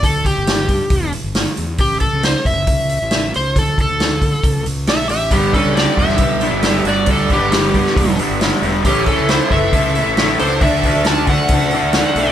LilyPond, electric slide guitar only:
\new Staff \with { instrumentName = "Electric slide guitar" } { \time 4/4 \key g \lydian \tempo 4 = 136 a'8 g'2 r4. | g'8 a'8 c''8 e''2 c''8 | a'8 a'2 r8 e''8 e''8 | g'8 a'8 d''8 e''2 d''8 |
a'8 g'2 r4. | g'8 a'8 c''8 e''2 c''8 | e''4 a''8 fis''2~ fis''8 | }